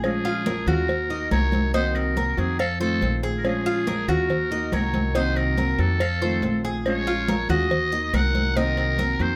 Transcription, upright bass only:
Already playing: A#1
0.67 D#2
1.31 C2
2.37 F2
3.01 A#1
4.08 D#2
4.72 C2
5.78 F2
6.42 A#1
7.49 D#2
8.13 C2
9.19 F2

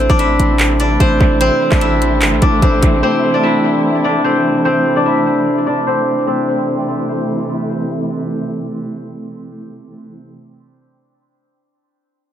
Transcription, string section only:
Already playing: C3 E3 A3 E4
6.27 C3 E3 A3 E4

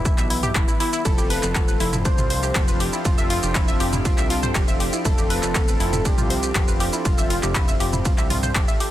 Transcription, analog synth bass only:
Already playing: E1
0.18 B1
0.55 E1
1.05 F1
1.43 F1
1.80 F1
2.18 C2
2.55 F1
3.05 F1
3.43 F1
3.80 F1
4.18 C2
4.55 F1
5.05 F1
5.43 F1
5.80 F1
6.18 C2
6.55 F1
7.05 F1
7.43 F1
7.80 F1
8.18 C2
8.55 F1

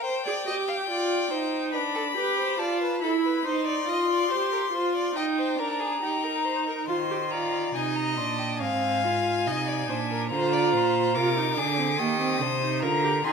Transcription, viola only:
0.26 G#4
0.47 G4
0.89 F4
1.31 D#4
1.74 D4
2.17 G4
2.60 F4
3.02 E4
3.46 D#4
3.87 F4
4.31 G4
4.72 F4
5.15 D#4
5.59 D4
6.02 D#4
6.88 F4
7.11 G4
7.32 F4
7.75 D#4
8.19 D4
8.61 C4
9.04 F4
9.47 D#4
9.89 D4
10.32 F4
11.15 F4
11.37 D#4
11.58 D4
11.78 C4
11.99 A#3
12.20 C4
12.41 D4
12.62 D#4
12.82 F4
13.04 G4
13.25 D#4

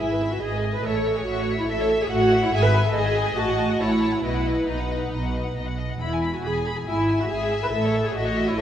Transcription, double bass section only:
0.00 G#1
0.41 G#1
0.84 A1
1.26 A1
1.69 A1
2.11 A1
2.53 G#1
2.95 G#1
3.37 A1
3.81 A1
4.24 B1
4.68 B1
5.12 B1
5.57 B1
6.00 E1
6.44 E1
6.88 G#1
7.30 G#1
7.73 A1
8.16 A1

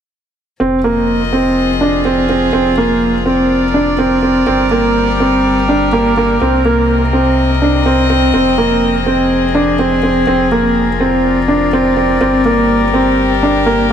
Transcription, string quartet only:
0.61 F3
0.88 F4 D#5
1.47 G#4
3.34 D5
3.42 A#4
4.48 G3
4.56 G4
6.42 C3
6.73 C4
6.90 D#5
8.36 F3
8.94 G#4
10.48 F4 A#4
11.17 D5
12.23 G3
12.46 G4

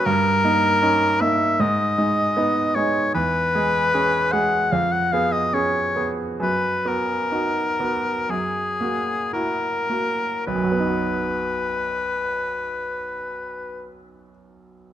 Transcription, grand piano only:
0.06 G2
0.44 A#3 D#4
0.82 C#4 D#4
1.21 A#3 D#4
1.60 G#2
1.98 G#3 D#4
2.37 B3 D#4
2.76 G#3 D#4
3.15 E2
3.55 G#3 G#4
3.94 C#4 G#4
4.33 G#3 G#4
4.72 F2
5.13 B3 G#4
5.54 C#4 G#4
5.96 B3 G#4
6.40 F#2
6.85 B3 F#4
7.32 D#4 F#4
7.80 B3 F#4
8.29 F#2
8.81 A#3 F#4
9.33 E4 F#4
9.89 A#3 F#4
10.47 B1
10.55 F#2
10.64 F#3
10.72 B3
10.79 D#4
10.87 F#4

